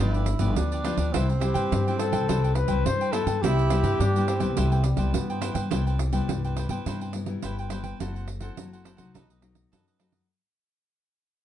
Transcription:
0.00 upright bass G1, nylon-string guitar G2 F3 B3 D4, tenor saxophone E4, cavaquinho F4 G4 B4 D5
0.14 cavaquinho G4 B4 D5, pandeiro
0.26 muted cavaquinho stroke, pandeiro
0.39 upright bass G1, nylon-string guitar F3 B3 D4, cavaquinho G4 B4 D5, pandeiro
0.55 upright bass D2, nylon-string guitar D3, tenor saxophone D4, pandeiro
0.72 cavaquinho G4 B4 D5, pandeiro
0.84 nylon-string guitar F3 B3 D4, cavaquinho F4 G4 B4 D5, pandeiro
0.97 upright bass D2, cavaquinho G4 B4 D5, pandeiro
1.12 upright bass C2, nylon-string guitar C3 G3 B3 E4, tenor saxophone C4, trumpet E4, cavaquinho E4 B4 C5 G5, pandeiro
1.29 muted cavaquinho stroke, pandeiro
1.40 nylon-string guitar G3 E4, cavaquinho E4 B4 C5 G5, trumpet G4, pandeiro
1.54 upright bass G2, cavaquinho B4 C5 G5, pandeiro
1.72 upright bass G2, nylon-string guitar G2, pandeiro
1.88 nylon-string guitar G3 E4, cavaquinho B4 C5 G5, pandeiro
1.98 cavaquinho E4 B4 C5 G5, trumpet A4, pandeiro
2.12 upright bass C2, cavaquinho B4 C5 G5, pandeiro
2.28 upright bass C2, nylon-string guitar C3 G3 E4, cavaquinho E4 B4 C5 G5, pandeiro
2.44 cavaquinho B4 C5 G5, pandeiro
2.55 trumpet B4, muted cavaquinho stroke, pandeiro
2.68 upright bass C2, nylon-string guitar G3 E4, cavaquinho B4 C5 G5, pandeiro
2.85 upright bass G2, nylon-string guitar G2, trumpet C5, pandeiro
3.01 cavaquinho B4 C5 G5, pandeiro
3.12 nylon-string guitar G3 B3 E4, cavaquinho E4 B4 C5 G5, trumpet A4, pandeiro
3.26 upright bass G2, cavaquinho B4 C5 G5, pandeiro
3.42 upright bass C2, nylon-string guitar C3 G3 B3 E4, tenor saxophone E4, cavaquinho E4 B4 C5 G5, trumpet G4, pandeiro
3.59 muted cavaquinho stroke, pandeiro
3.70 nylon-string guitar G3 B3 E4, cavaquinho E4 B4 C5 G5, pandeiro
3.83 upright bass G2, cavaquinho B4 C5 G5, pandeiro
3.99 upright bass G2, nylon-string guitar G2, tenor saxophone D4, pandeiro
4.16 nylon-string guitar G3 B3 E4, cavaquinho B4 C5 G5, pandeiro
4.28 tenor saxophone C4, cavaquinho E4 B4 C5 G5, pandeiro
4.40 upright bass C2, nylon-string guitar G3 B3 E4, cavaquinho B4 C5 G5, pandeiro
4.57 upright bass C2, nylon-string guitar C3 G3 B3 E4, tenor saxophone A3, cavaquinho E4 B4 C5 G5, pandeiro
4.72 cavaquinho B4 C5 G5, pandeiro
4.84 tenor saxophone G3, muted cavaquinho stroke, pandeiro
4.97 upright bass C2, nylon-string guitar G3 B3 E4, cavaquinho B4 C5 G5, pandeiro
5.14 nylon-string guitar G2, upright bass G2, tenor saxophone B3, pandeiro
5.30 cavaquinho B4 C5 G5, pandeiro
5.41 nylon-string guitar G3 B3 E4, cavaquinho E4 B4 C5 G5, pandeiro
5.54 upright bass G2, cavaquinho B4 C5 G5, pandeiro
5.71 upright bass C2, nylon-string guitar C3 G3 B3 E4, cavaquinho E4 B4 C5 G5, pandeiro
5.87 cavaquinho B4 C5 G5, pandeiro
5.99 muted cavaquinho stroke, pandeiro
6.12 nylon-string guitar G3 B3 E4, cavaquinho B4 C5 G5, pandeiro
6.28 upright bass C2, nylon-string guitar G2, pandeiro
6.44 cavaquinho B4 C5 G5, pandeiro
6.57 cavaquinho E4 B4 C5 G5, pandeiro
6.68 upright bass G2, nylon-string guitar G3 B3 E4, cavaquinho B4 C5 G5, pandeiro
6.86 upright bass G2, nylon-string guitar C3, cavaquinho E4 B4 C5 G5, pandeiro
7.01 cavaquinho B4 C5 G5, pandeiro
7.13 nylon-string guitar G3 B3 E4, muted cavaquinho stroke, pandeiro
7.26 nylon-string guitar G3 B3 E4, pandeiro
7.42 upright bass G1, nylon-string guitar G2, cavaquinho E4 B4 C5 G5, pandeiro
7.59 cavaquinho B4 C5 G5, pandeiro
7.70 nylon-string guitar G3 B3 E4, cavaquinho E4 B4 C5 G5, pandeiro
7.83 cavaquinho B4 C5 G5, pandeiro
8.00 upright bass F#1, nylon-string guitar F#3 C4 E4 A4, cavaquinho E4 A4 C5 F#5, pandeiro
8.15 cavaquinho A4 C5 F#5, pandeiro
8.28 muted cavaquinho stroke, pandeiro
8.40 nylon-string guitar C4 E4 A4, cavaquinho A4 C5 F#5, pandeiro
8.57 upright bass F#1, nylon-string guitar F#3, pandeiro
8.73 cavaquinho A4 C5 F#5, pandeiro
8.84 cavaquinho E4 A4 C5 F#5, pandeiro
8.97 upright bass C2, nylon-string guitar F#3 A3 D#4, cavaquinho A4 C5 F#5, pandeiro
9.14 upright bass B1, nylon-string guitar B2, cavaquinho D#4 A4 B4 D#5, pandeiro
9.30 cavaquinho A4 B4 D#5, pandeiro
9.42 nylon-string guitar F#3 A3 D#4, muted cavaquinho stroke, pandeiro
9.55 pandeiro
9.72 upright bass F#2, nylon-string guitar F#2, cavaquinho D#4 A4 B4 D#5, pandeiro
9.87 cavaquinho A4 B4 D#5, pandeiro
9.99 nylon-string guitar F#3 A3 D#4, cavaquinho D#4 A4 B4 D#5, pandeiro
10.12 cavaquinho A4 B4 D#5, pandeiro

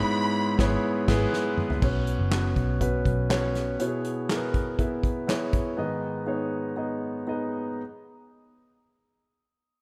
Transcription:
Already playing: grand piano G#4 C#5, violin section B5
0.59 picked electric bass G#1, grand piano B3 E4 G#4 C#5, kick, snare
1.08 picked electric bass G#1, grand piano B3 E4 G#4 B4, kick, snare, crash
1.33 snare
1.58 mid tom
1.70 floor tom
1.82 picked electric bass B1, grand piano B3 C#4 F#4 C#5, kick, crash
2.07 closed hi-hat
2.19 picked electric bass F#1
2.31 grand piano B3 C#4 F#4 B4, snare, clap, closed hi-hat
2.56 picked electric bass B1, kick, closed hi-hat
2.80 grand piano B3 C#4 F#4 B4, kick, closed hi-hat
3.05 picked electric bass B1, kick, closed hi-hat
3.30 grand piano B3 C#4 F#4 C#5, snare, clap, closed hi-hat
3.55 snare, closed hi-hat
3.79 grand piano B2 B3 E4 F#4 C#5, closed hi-hat
3.86 grand piano G#4
4.05 closed hi-hat
4.29 grand piano B3 E4 G#4 A#4, snare, clap, closed hi-hat
4.37 grand piano B4
4.54 kick, closed hi-hat
4.78 grand piano B3 E4 G#4 E5, kick, closed hi-hat
5.04 kick, closed hi-hat
5.27 grand piano B3 E4 G#4 C#5, snare, clap, closed hi-hat
5.53 kick, closed hi-hat
5.77 grand piano G#2 D#3 B3 D#4 G#4 D#5
6.26 grand piano B3 D#4 G#4 C#5
6.76 grand piano B3 D#4 G#4 D#5
7.27 grand piano B3 D#4 G#4 D#5

